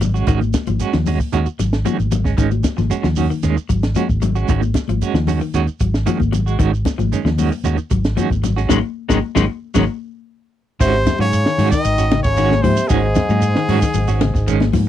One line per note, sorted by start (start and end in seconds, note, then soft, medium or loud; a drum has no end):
0.00 0.24 G#1 medium
0.00 0.20 F#3 medium
0.00 muted clean electric guitar stroke soft
0.00 closed hi-hat medium
0.00 high conga medium
0.00 low conga medium
0.00 shekere medium
0.14 0.26 G#3 soft
0.14 0.27 C#4 medium
0.14 0.27 F#4 medium
0.14 shekere soft
0.27 0.51 G#1 loud
0.27 0.41 D#3 medium
0.27 0.47 D#3 medium
0.27 0.40 G#3 medium
0.27 0.40 C#4 medium
0.27 0.40 F#4 loud
0.27 kick medium
0.27 closed hi-hat medium
0.27 shekere medium
0.41 muted clean electric guitar stroke soft
0.41 high conga medium
0.41 shekere soft
0.53 muted clean electric guitar stroke soft
0.53 kick medium
0.53 snare medium
0.53 closed hi-hat soft
0.53 high conga medium
0.53 shekere medium
0.67 0.79 G#1 medium
0.67 0.86 F3 medium
0.67 muted clean electric guitar stroke soft
0.67 closed hi-hat soft
0.67 high conga medium
0.67 low conga medium
0.67 shekere soft
0.79 0.96 G#3 medium
0.79 0.96 C#4 medium
0.79 0.97 F#4 medium
0.79 muted clean electric guitar stroke medium
0.79 closed hi-hat medium
0.79 shekere medium
0.93 1.18 D#2 medium
0.93 1.12 F3 medium
0.93 snare medium
0.93 shekere soft
1.06 1.20 G#3 medium
1.06 1.19 C#4 medium
1.06 1.19 F#4 medium
1.06 muted clean electric guitar stroke medium
1.06 open hi-hat medium
1.06 high conga medium
1.06 low conga medium
1.06 shekere medium
1.20 muted clean electric guitar stroke soft
1.20 kick medium
1.20 shekere soft
1.33 1.46 D#2 medium
1.33 1.46 D#3 medium
1.33 1.46 G#3 medium
1.33 1.46 C#4 medium
1.33 1.47 F#4 medium
1.33 closed hi-hat medium
1.33 shekere medium
1.46 muted fingered electric bass stroke soft
1.46 muted clean electric guitar stroke soft
1.46 shekere soft
1.59 1.83 G#1 medium
1.59 1.78 F#3 medium
1.59 muted clean electric guitar stroke soft
1.59 snare soft
1.59 closed hi-hat medium
1.59 shekere medium
1.73 snare medium
1.73 shekere soft
1.85 1.99 D#3 medium
1.85 2.05 F3 medium
1.85 1.98 G#3 medium
1.85 1.98 C#4 medium
1.85 1.97 F#4 medium
1.85 closed hi-hat medium
1.85 high conga medium
1.85 shekere medium
1.99 2.35 G#1 medium
1.99 muted clean electric guitar stroke soft
1.99 high conga medium
1.99 shekere soft
2.11 2.31 F#3 medium
2.11 muted clean electric guitar stroke soft
2.11 closed hi-hat medium
2.11 high conga medium
2.11 low conga medium
2.11 shekere medium
2.25 2.36 G#3 soft
2.25 2.37 C#4 medium
2.25 muted clean electric guitar stroke medium
2.25 kick medium
2.25 snare soft
2.25 shekere soft
2.37 2.62 G#1 loud
2.37 2.51 D#3 medium
2.37 2.57 D#3 medium
2.37 2.50 G#3 medium
2.37 2.50 C#4 medium
2.37 muted clean electric guitar stroke medium
2.37 kick medium
2.37 snare soft
2.37 closed hi-hat medium
2.37 shekere medium
2.51 high conga medium
2.51 shekere soft
2.63 muted clean electric guitar stroke soft
2.63 kick medium
2.63 snare medium
2.63 closed hi-hat soft
2.63 high conga medium
2.63 shekere medium
2.77 2.90 G#1 medium
2.77 2.97 F3 medium
2.77 muted clean electric guitar stroke soft
2.77 snare soft
2.77 high conga medium
2.77 low conga medium
2.77 shekere soft
2.90 3.06 G#3 medium
2.90 3.07 C#4 medium
2.90 3.07 F#4 medium
2.90 closed hi-hat medium
2.90 shekere medium
3.03 3.28 D#2 medium
3.03 3.22 F3 medium
3.03 snare medium
3.03 shekere soft
3.16 3.30 D#3 medium
3.16 3.30 C#4 medium
3.16 3.31 F#4 medium
3.16 muted clean electric guitar stroke medium
3.16 open hi-hat medium
3.16 high conga medium
3.16 low conga medium
3.16 shekere medium
3.30 3.49 D#3 medium
3.30 shekere soft
3.43 3.56 D#2 medium
3.43 3.57 D#3 medium
3.43 3.56 G#3 medium
3.43 3.56 C#4 medium
3.43 muted clean electric guitar stroke medium
3.43 snare soft
3.43 closed hi-hat medium
3.43 shekere medium
3.57 muted clean electric guitar stroke soft
3.57 muted fingered electric bass stroke soft
3.57 shekere soft
3.69 3.94 G#1 medium
3.69 3.88 F#3 medium
3.69 muted clean electric guitar stroke soft
3.69 kick medium
3.69 closed hi-hat medium
3.69 shekere medium
3.83 snare medium
3.83 closed hi-hat soft
3.83 shekere soft
3.95 4.15 F3 medium
3.95 4.09 G#3 medium
3.95 4.09 C#4 medium
3.95 4.08 F#4 medium
3.95 closed hi-hat medium
3.95 high conga medium
3.95 shekere medium
4.09 4.46 G#1 medium
4.09 muted clean electric guitar stroke soft
4.09 kick medium
4.09 shekere soft
4.22 4.41 F#3 medium
4.22 muted clean electric guitar stroke soft
4.22 closed hi-hat soft
4.22 high conga medium
4.22 low conga medium
4.22 shekere medium
4.35 4.48 G#3 soft
4.35 4.48 C#4 medium
4.35 4.49 F#4 medium
4.35 shekere soft
4.48 4.73 G#1 medium
4.48 4.62 D#3 medium
4.48 4.68 D#3 medium
4.48 4.62 G#3 medium
4.48 4.62 C#4 medium
4.48 4.61 F#4 medium
4.48 kick medium
4.48 closed hi-hat medium
4.48 shekere medium
4.62 muted clean electric guitar stroke soft
4.62 high conga medium
4.62 shekere soft
4.74 muted clean electric guitar stroke soft
4.74 kick medium
4.74 snare medium
4.74 closed hi-hat soft
4.74 high conga medium
4.74 shekere medium
4.88 5.00 G#1 medium
4.88 5.08 F3 medium
4.88 muted clean electric guitar stroke soft
4.88 closed hi-hat soft
4.88 high conga medium
4.88 shekere soft
5.01 5.18 G#3 medium
5.01 5.18 C#4 medium
5.01 5.18 F#4 medium
5.01 closed hi-hat medium
5.01 shekere medium
5.14 5.39 D#2 medium
5.14 5.34 F3 medium
5.14 snare medium
5.14 shekere soft
5.27 5.41 D#3 medium
5.27 5.40 G#3 medium
5.27 5.40 C#4 medium
5.27 5.40 F#4 medium
5.27 snare soft
5.27 open hi-hat medium
5.27 high conga medium
5.27 low conga medium
5.27 shekere medium
5.41 5.60 D#3 medium
5.41 muted clean electric guitar stroke soft
5.41 shekere soft
5.54 5.67 D#2 medium
5.54 5.68 D#3 medium
5.54 5.67 G#3 medium
5.54 5.67 C#4 medium
5.54 5.67 F#4 loud
5.54 closed hi-hat medium
5.54 shekere medium
5.67 muted clean electric guitar stroke soft
5.67 muted fingered electric bass stroke soft
5.67 shekere soft
5.80 6.05 G#1 medium
5.80 6.00 F#3 medium
5.80 muted clean electric guitar stroke soft
5.80 kick medium
5.80 closed hi-hat medium
5.80 shekere medium
5.94 snare medium
5.94 shekere soft
6.06 6.20 D#3 medium
6.06 6.26 F3 medium
6.06 6.19 G#3 medium
6.06 6.19 C#4 medium
6.06 6.18 F#4 medium
6.06 closed hi-hat medium
6.06 high conga medium
6.06 shekere medium
6.20 6.56 G#1 medium
6.20 muted clean electric guitar stroke soft
6.20 kick medium
6.20 high conga medium
6.20 shekere soft
6.32 6.52 F#3 medium
6.32 muted clean electric guitar stroke soft
6.32 closed hi-hat medium
6.32 high conga medium
6.32 low conga medium
6.32 shekere medium
6.46 6.58 G#3 medium
6.46 6.59 F#4 medium
6.46 muted clean electric guitar stroke medium
6.46 shekere soft
6.59 6.84 G#1 medium
6.59 6.73 D#3 medium
6.59 6.78 D#3 medium
6.59 6.73 G#3 medium
6.59 6.72 C#4 medium
6.59 6.72 F#4 medium
6.59 kick medium
6.59 closed hi-hat medium
6.59 shekere medium
6.73 muted clean electric guitar stroke soft
6.73 shekere soft
6.85 muted clean electric guitar stroke soft
6.85 kick medium
6.85 snare medium
6.85 closed hi-hat medium
6.85 high conga medium
6.85 shekere medium
6.98 7.11 G#1 medium
6.98 7.17 F3 medium
6.98 muted clean electric guitar stroke soft
6.98 high conga medium
6.98 low conga medium
6.98 shekere soft
7.12 7.28 D#3 medium
7.12 7.28 G#3 medium
7.12 7.29 C#4 medium
7.12 closed hi-hat medium
7.12 shekere medium
7.25 7.49 D#2 medium
7.25 7.44 F3 medium
7.25 snare medium
7.25 shekere soft
7.38 7.52 D#3 medium
7.38 7.52 G#3 medium
7.38 7.51 C#4 medium
7.38 7.50 F#4 medium
7.38 open hi-hat medium
7.38 high conga medium
7.38 low conga medium
7.38 shekere medium
7.51 muted clean electric guitar stroke soft
7.51 shekere soft
7.64 7.77 D#2 medium
7.64 7.78 D#3 medium
7.64 7.77 G#3 medium
7.64 7.77 C#4 medium
7.64 7.77 F#4 medium
7.64 closed hi-hat medium
7.64 shekere medium
7.78 muted clean electric guitar stroke soft
7.78 muted fingered electric bass stroke soft
7.78 shekere soft
7.90 8.15 G#1 medium
7.90 8.10 F#3 medium
7.90 muted clean electric guitar stroke soft
7.90 kick medium
7.90 closed hi-hat soft
7.90 shekere medium
8.04 snare medium
8.04 closed hi-hat soft
8.04 shekere soft
8.16 8.30 D#3 medium
8.16 8.36 F3 medium
8.16 8.30 G#3 medium
8.16 8.30 C#4 medium
8.16 8.30 F#4 medium
8.16 closed hi-hat medium
8.16 high conga medium
8.16 shekere medium
8.30 8.67 G#1 medium
8.30 kick medium
8.30 high conga medium
8.30 shekere soft
8.43 8.63 F#3 medium
8.43 muted clean electric guitar stroke soft
8.43 snare soft
8.43 closed hi-hat soft
8.43 high conga medium
8.43 low conga medium
8.43 shekere medium
8.56 8.69 G#3 soft
8.56 8.69 C#4 medium
8.56 8.70 F#4 medium
8.56 snare soft
8.56 shekere soft
8.69 8.80 G#1 medium
8.69 8.78 D#3 medium
8.69 8.78 F#3 medium
8.69 8.78 G#3 medium
8.69 8.79 G#3 medium
8.69 8.79 C#4 medium
8.69 8.79 D#4 medium
8.69 kick medium
8.69 snare medium
8.69 high conga loud
8.69 shekere loud
9.09 9.19 G#1 medium
9.09 9.18 D#3 medium
9.09 9.18 F#3 medium
9.09 9.18 G#3 medium
9.09 9.18 C#4 medium
9.09 9.18 D#4 medium
9.09 kick medium
9.09 snare medium
9.09 high conga medium
9.09 shekere loud
9.35 9.46 G#1 medium
9.35 9.44 D#3 medium
9.35 9.44 F#3 medium
9.35 9.44 G#3 medium
9.35 9.44 C#4 medium
9.35 9.44 D#4 medium
9.35 kick medium
9.35 snare medium
9.35 high conga medium
9.35 shekere loud
9.74 9.85 G#1 loud
9.74 9.84 D#3 medium
9.74 9.84 F#3 medium
9.74 9.84 G#3 medium
9.74 9.84 C#4 medium
9.74 9.84 D#4 medium
9.74 kick medium
9.74 snare medium
9.74 high conga medium
9.74 shekere medium
10.80 11.05 G#1 loud
10.80 11.18 C3 medium
10.80 10.96 D#3 medium
10.80 10.96 G#3 medium
10.80 10.96 C#4 medium
10.80 10.97 F#4 medium
10.80 11.17 C5 loud
10.80 muted clean electric guitar stroke medium
10.80 kick loud
10.80 ride bell medium
10.80 shekere medium
11.06 muted clean electric guitar stroke soft
11.06 kick medium
11.06 snare medium
11.06 ride bell soft
11.06 high conga medium
11.06 low conga medium
11.06 shekere medium
11.19 11.44 G#2 medium
11.19 11.69 C#3 medium
11.19 11.39 F#3 medium
11.19 11.32 G#3 soft
11.19 11.32 C#4 medium
11.19 11.32 F#4 medium
11.19 11.69 C#5 loud
11.19 shekere soft
11.33 muted clean electric guitar stroke soft
11.33 ride bell medium
11.33 shekere medium
11.46 11.66 D#3 medium
11.46 muted clean electric guitar stroke soft
11.46 snare medium
11.58 11.71 G#2 medium
11.58 11.72 D#3 medium
11.58 11.71 G#3 medium
11.58 11.71 C#4 medium
11.58 11.71 F#4 medium
11.58 open hi-hat medium
11.58 low conga medium
11.58 shekere soft
11.70 12.21 D#3 medium
11.70 11.92 D#3 medium
11.70 12.20 D#5 loud
11.70 muted clean electric guitar stroke soft
11.70 kick medium
11.70 snare soft
11.70 shekere medium
11.85 12.22 G#1 loud
11.85 ride bell soft
11.85 shekere medium
11.98 12.11 C#4 medium
11.98 12.11 F#4 medium
11.98 muted clean electric guitar stroke soft
11.98 shekere medium
12.11 12.31 C#3 medium
12.11 muted clean electric guitar stroke soft
12.11 snare medium
12.11 ride bell medium
12.11 high conga loud
12.23 12.61 G#1 medium
12.23 12.61 C#3 medium
12.23 12.63 C#5 loud
12.23 muted clean electric guitar stroke soft
12.23 kick medium
12.23 snare soft
12.23 ride bell soft
12.23 shekere soft
12.37 12.53 D#3 medium
12.37 12.57 D#3 medium
12.37 12.54 G#3 medium
12.37 12.54 C#4 loud
12.37 12.54 F#4 loud
12.37 snare soft
12.37 ride bell medium
12.37 shekere loud
12.51 snare medium
12.51 high conga medium
12.62 12.76 G#2 loud
12.62 12.90 C3 medium
12.62 12.83 F3 medium
12.62 12.89 C5 medium
12.62 muted clean electric guitar stroke soft
12.62 kick medium
12.62 snare soft
12.62 open hi-hat medium
12.62 high conga medium
12.62 low conga medium
12.62 shekere soft
12.76 muted clean electric guitar stroke soft
12.76 shekere medium
12.88 13.14 G#1 loud
12.88 14.73 G#2 medium
12.88 13.06 D#3 medium
12.88 13.10 D#3 medium
12.88 13.06 G#3 medium
12.88 13.06 C#4 medium
12.88 13.06 F#4 medium
12.88 14.72 G#4 loud
12.88 kick loud
12.88 ride bell medium
12.88 shekere medium
13.15 muted clean electric guitar stroke soft
13.15 kick medium
13.15 snare medium
13.15 ride bell medium
13.15 high conga loud
13.15 low conga medium
13.15 shekere medium
13.29 13.54 G#2 medium
13.29 13.49 F#3 medium
13.29 13.41 G#3 soft
13.29 13.42 C#4 medium
13.29 high conga medium
13.29 shekere soft
13.42 muted clean electric guitar stroke soft
13.42 ride bell medium
13.42 shekere medium
13.55 13.75 D#3 medium
13.55 muted clean electric guitar stroke medium
13.55 snare medium
13.69 13.81 G#2 medium
13.69 13.82 D#3 medium
13.69 13.81 G#3 loud
13.69 13.80 C#4 loud
13.69 13.80 F#4 loud
13.69 open hi-hat medium
13.69 low conga medium
13.69 shekere soft
13.82 14.02 D#3 medium
13.82 kick medium
13.82 snare soft
13.82 ride bell medium
13.82 shekere medium
13.94 14.31 G#1 loud
13.94 ride bell medium
13.94 low conga medium
13.94 shekere medium
14.08 14.20 G#3 medium
14.08 14.20 C#4 medium
14.08 14.20 F#4 medium
14.08 snare soft
14.08 shekere loud
14.21 14.40 C#3 medium
14.21 muted clean electric guitar stroke soft
14.21 snare medium
14.21 ride bell medium
14.21 high conga loud
14.34 14.70 G#1 medium
14.34 muted clean electric guitar stroke medium
14.34 kick medium
14.34 snare soft
14.34 shekere soft
14.47 14.63 D#3 medium
14.47 14.64 G#3 medium
14.47 14.64 C#4 loud
14.47 muted clean electric guitar stroke medium
14.47 ride bell medium
14.47 shekere medium
14.60 snare medium
14.60 high conga medium
14.73 14.86 G#2 loud
14.73 14.89 F3 medium
14.73 muted clean electric guitar stroke soft
14.73 kick medium
14.73 snare soft
14.73 open hi-hat medium
14.73 high conga medium
14.73 low conga medium
14.73 shekere soft